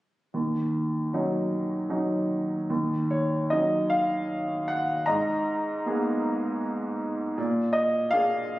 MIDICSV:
0, 0, Header, 1, 2, 480
1, 0, Start_track
1, 0, Key_signature, -6, "minor"
1, 0, Tempo, 783290
1, 203, Time_signature, 3, 2, 24, 8
1, 1160, Tempo, 805369
1, 2600, Tempo, 771208
1, 4040, Tempo, 751880
1, 5297, End_track
2, 0, Start_track
2, 0, Title_t, "Upright piano"
2, 0, Program_c, 0, 0
2, 209, Note_on_c, 0, 39, 34
2, 322, Control_c, 0, 64, 127
2, 694, Note_on_c, 0, 54, 33
2, 699, Note_on_c, 0, 61, 31
2, 700, Note_on_c, 0, 63, 33
2, 1071, Note_off_c, 0, 54, 0
2, 1073, Note_off_c, 0, 61, 0
2, 1074, Note_off_c, 0, 63, 0
2, 1161, Note_on_c, 0, 54, 31
2, 1162, Note_on_c, 0, 61, 32
2, 1166, Note_on_c, 0, 63, 36
2, 1543, Note_off_c, 0, 54, 0
2, 1544, Note_off_c, 0, 61, 0
2, 1546, Note_off_c, 0, 63, 0
2, 1617, Note_off_c, 0, 39, 0
2, 1640, Note_on_c, 0, 39, 43
2, 1646, Control_c, 0, 64, 0
2, 1768, Control_c, 0, 64, 127
2, 1883, Note_on_c, 0, 73, 47
2, 2119, Note_on_c, 0, 75, 57
2, 2129, Note_on_c, 0, 54, 35
2, 2131, Note_on_c, 0, 61, 32
2, 2133, Note_off_c, 0, 73, 0
2, 2134, Note_on_c, 0, 63, 38
2, 2344, Note_off_c, 0, 75, 0
2, 2354, Note_on_c, 0, 77, 71
2, 2586, Note_off_c, 0, 54, 0
2, 2587, Note_off_c, 0, 61, 0
2, 2589, Note_off_c, 0, 63, 0
2, 2830, Note_on_c, 0, 78, 67
2, 2851, Note_off_c, 0, 77, 0
2, 3059, Note_off_c, 0, 39, 0
2, 3066, Note_on_c, 0, 82, 72
2, 3076, Note_on_c, 0, 75, 47
2, 3084, Note_off_c, 0, 78, 0
2, 3086, Note_on_c, 0, 44, 54
2, 3090, Control_c, 0, 64, 0
2, 3207, Control_c, 0, 64, 127
2, 3565, Note_on_c, 0, 58, 40
2, 3568, Note_on_c, 0, 59, 33
2, 3572, Note_on_c, 0, 68, 45
2, 4026, Note_off_c, 0, 58, 0
2, 4027, Note_off_c, 0, 59, 0
2, 4029, Note_off_c, 0, 68, 0
2, 4246, Note_off_c, 0, 82, 0
2, 4251, Note_off_c, 0, 75, 0
2, 4496, Note_off_c, 0, 44, 0
2, 4521, Note_on_c, 0, 46, 59
2, 4530, Control_c, 0, 64, 0
2, 4656, Control_c, 0, 64, 127
2, 4745, Note_on_c, 0, 75, 68
2, 4987, Note_on_c, 0, 77, 82
2, 4999, Note_on_c, 0, 58, 43
2, 5000, Note_off_c, 0, 75, 0
2, 5002, Note_on_c, 0, 62, 44
2, 5006, Note_on_c, 0, 68, 49
2, 5297, Note_off_c, 0, 46, 0
2, 5297, Note_off_c, 0, 58, 0
2, 5297, Note_off_c, 0, 62, 0
2, 5297, Note_off_c, 0, 68, 0
2, 5297, Note_off_c, 0, 77, 0
2, 5297, End_track
0, 0, End_of_file